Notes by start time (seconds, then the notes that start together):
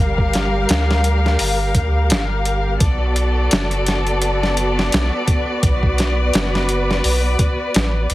Already playing: G3 G4 A#4 F5
0.00 G1
0.18 kick
0.33 snare, closed hi-hat
0.69 D2, snare, closed hi-hat
0.91 snare
1.04 closed hi-hat
1.26 snare
1.39 G1, open hi-hat
1.75 D2, kick, closed hi-hat
2.10 G1, snare, closed hi-hat
2.45 closed hi-hat
2.80 B1 B3 F#4 A4 D5, kick, closed hi-hat
3.16 closed hi-hat
3.51 F#1, snare, closed hi-hat
3.71 closed hi-hat
3.86 snare, closed hi-hat
4.07 closed hi-hat
4.22 closed hi-hat
4.43 snare
4.57 closed hi-hat
4.79 snare
4.92 B1, snare, closed hi-hat
5.28 kick, closed hi-hat
5.62 B1 B4, kick, closed hi-hat
5.83 kick
5.98 snare, closed hi-hat
6.33 F#1, snare, closed hi-hat
6.55 snare
6.69 closed hi-hat
6.91 snare
7.04 B1, open hi-hat
7.39 kick, closed hi-hat
7.74 A1, snare, closed hi-hat
8.10 B1, closed hi-hat